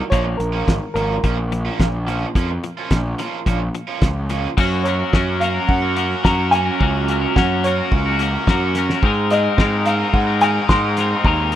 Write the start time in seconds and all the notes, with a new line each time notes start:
0.10 A#1 A#2 F3 A#3 C#4 F4 C#5, kick, closed hi-hat
0.25 muted overdriven electric guitar stroke
0.37 A#1 A#2 F3 A#4, closed hi-hat
0.52 F3 A#3 C#4 F4
0.68 G#1 A#2 F3, kick, snare, closed hi-hat
0.94 G#1 A#2 F3 A#3 C#4 F4 A#4, closed hi-hat
1.24 A#1 A#2 F3 A#3 C#4 F4, kick, closed hi-hat
1.38 muted overdriven electric guitar stroke
1.52 A#2 F3, closed hi-hat
1.65 F3 A#3 C#4 F4
1.80 A#1 A#2 F3, kick, snare, closed hi-hat
2.07 A#2 F3 A#3 C#4 F4, closed hi-hat
2.35 F2 A#2 F3 A#3 C#4 F4, kick, closed hi-hat
2.50 muted overdriven electric guitar stroke
2.64 A#2 F3, closed hi-hat
2.77 F3 A#3 C#4 F4
2.91 A#1 A#2 F3, kick, snare, closed hi-hat
3.19 A#2 F3 A#3 C#4 F4, closed hi-hat
3.46 A#1 A#2 F3 A#3 C#4 F4, kick, closed hi-hat
3.60 muted overdriven electric guitar stroke
3.75 A#2 F3, closed hi-hat
3.87 F3 A#3 C#4 F4
4.02 C#2 A#2 F3, kick, snare, closed hi-hat
4.29 A#2 F3 A#3 C#4 F4, closed hi-hat
4.57 F#2 F#3 A#3 C#4 F#4 A#4, kick, crash
4.83 F#3 A#3 C#4 C#5, closed hi-hat
4.88 F#4 A#4
4.99 C#4 F#4 A#4
5.13 F#2 F#3 A#3 C#4 F#4 A#4, kick, snare
5.40 A#3 C#4 F#4 A#4 F5, closed hi-hat
5.54 C#4 F#4 A#4
5.68 F#2 F#4 F#5, kick
5.82 C#4 F#4 A#4
5.96 A#3 C#4 F#4 A#4, closed hi-hat
6.23 F#2 F#3 A#3 C#4 F#4 A#4 A#5, kick, snare
6.51 A#3 C#4 F#4 A#4 G#5, closed hi-hat
6.65 C#4 F#4 A#4
6.79 C#2 F#3 A#3 C#4 F#4 A#4, kick
7.08 F#3 A#3 C#4 F#4 A#4, closed hi-hat
7.21 C#4 F#4 A#4
7.35 F#2 F#3 A#3 C#4 F#4 A#4 F#5, kick, snare
7.64 A#3 C#4 F#4 A#4 C#5, closed hi-hat
7.78 C#4 F#4 A#4
7.92 C#2 F#4, kick
8.06 C#4 F#4 A#4
8.19 A#3 C#4 F#4 A#4, closed hi-hat
8.47 F#2 F#3 A#3 C#4 F#4 A#4, kick, snare
8.75 A#3 C#4 F#4 A#4, snare, closed hi-hat
8.89 C#4 F#4 A#4, snare
9.02 G#2 G#3 C4 D#4 A#4, kick
9.30 G#3 C4 D#4 A#4 D#5, closed hi-hat
9.44 C4 D#4 A#4
9.58 G#2 G#3 C4 D#4 A#4, kick, snare
9.85 G#3 C4 D#4 A#4 F5, closed hi-hat
10.00 C4 D#4 A#4
10.14 G#2 D#4 F#5, kick
10.27 C4 D#4 A#4
10.41 G#3 C4 D#4 A#4 G#5, closed hi-hat
10.68 G#2 G#3 C4 D#4 A#4 C6, kick, snare
10.97 G#3 C4 D#4 A#4, snare, closed hi-hat
11.11 C4 D#4 A#4
11.16 C6
11.24 D#2 G#3 C4 D#4 A#4 A#5, kick
11.52 G#3, closed hi-hat